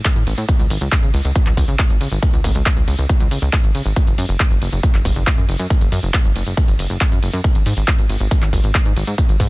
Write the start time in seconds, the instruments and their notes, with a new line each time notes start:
0.05 kick, clap, closed hi-hat
0.16 analog synth bass A2, closed hi-hat
0.27 analog synth bass A1, open hi-hat, ride
0.38 analog synth bass A2, closed hi-hat
0.49 kick, closed hi-hat
0.59 analog synth bass C#2, closed hi-hat
0.70 analog synth bass G#1, open hi-hat, ride
0.81 analog synth bass C#2, closed hi-hat
0.92 kick, clap, closed hi-hat
1.03 analog synth bass C#2, closed hi-hat
1.14 analog synth bass C#2, open hi-hat, ride
1.25 analog synth bass C#2, closed hi-hat
1.36 kick, closed hi-hat
1.46 analog synth bass C#2, clap, closed hi-hat
1.57 analog synth bass C#2, kick, open hi-hat, ride
1.68 analog synth bass C#2, closed hi-hat
1.79 kick, clap, closed hi-hat
1.90 analog synth bass G#1, closed hi-hat
2.01 analog synth bass C#2, open hi-hat, ride
2.12 analog synth bass G#1, closed hi-hat
2.23 kick, closed hi-hat
2.33 analog synth bass C#2, closed hi-hat
2.44 analog synth bass G#1, kick, open hi-hat, ride
2.55 analog synth bass C#2, closed hi-hat
2.66 kick, clap, closed hi-hat
2.77 analog synth bass C#2, closed hi-hat
2.88 analog synth bass C#2, open hi-hat, ride
2.99 analog synth bass C#2, closed hi-hat
3.09 kick, closed hi-hat
3.20 analog synth bass C#2, closed hi-hat
3.31 analog synth bass C#2, open hi-hat, ride
3.42 analog synth bass C#2, closed hi-hat
3.53 kick, clap, closed hi-hat
3.64 analog synth bass G#1, closed hi-hat
3.75 analog synth bass C#2, open hi-hat, ride
3.86 analog synth bass G#1, closed hi-hat
3.96 kick, closed hi-hat
4.07 analog synth bass F#1, closed hi-hat
4.18 analog synth bass F#2, open hi-hat, ride
4.29 analog synth bass F#1, closed hi-hat
4.40 kick, clap, closed hi-hat
4.51 analog synth bass F#1, closed hi-hat
4.62 analog synth bass F#1, open hi-hat, ride
4.72 analog synth bass F#1, closed hi-hat
4.83 kick, closed hi-hat
4.94 analog synth bass F#1, clap, closed hi-hat
5.05 analog synth bass F#1, kick, open hi-hat, ride
5.16 analog synth bass F#1, closed hi-hat
5.27 kick, clap, closed hi-hat
5.38 analog synth bass F#2, closed hi-hat
5.49 analog synth bass F#1, open hi-hat, ride
5.59 analog synth bass F#2, closed hi-hat
5.70 kick, closed hi-hat
5.81 analog synth bass F#1, closed hi-hat
5.92 analog synth bass F#2, open hi-hat, ride
6.03 analog synth bass F#1, closed hi-hat
6.14 kick, clap, closed hi-hat
6.25 analog synth bass F#1, closed hi-hat
6.36 analog synth bass F#1, open hi-hat, ride
6.46 analog synth bass F#1, closed hi-hat
6.57 kick, closed hi-hat
6.68 analog synth bass F#1, closed hi-hat
6.79 analog synth bass F#1, open hi-hat, ride
6.90 analog synth bass F#1, closed hi-hat
7.01 kick, clap, closed hi-hat
7.12 analog synth bass F#2, closed hi-hat
7.23 analog synth bass F#1, open hi-hat, ride
7.33 analog synth bass F#2, closed hi-hat
7.44 kick, closed hi-hat
7.55 analog synth bass G#1, closed hi-hat
7.66 analog synth bass G#2, open hi-hat, ride
7.77 analog synth bass G#1, closed hi-hat
7.88 kick, clap, closed hi-hat
7.99 analog synth bass G#1, closed hi-hat
8.09 analog synth bass G#1, open hi-hat, ride
8.20 analog synth bass G#1, closed hi-hat
8.31 kick, closed hi-hat
8.42 analog synth bass G#1, clap, closed hi-hat
8.53 analog synth bass G#1, kick, open hi-hat, ride
8.64 analog synth bass G#1, closed hi-hat
8.75 kick, clap, closed hi-hat
8.86 analog synth bass G#2, closed hi-hat
8.96 analog synth bass G#1, open hi-hat, ride
9.07 analog synth bass G#2, closed hi-hat
9.18 kick, closed hi-hat
9.29 analog synth bass G#1, closed hi-hat
9.40 analog synth bass G#2, kick, open hi-hat, ride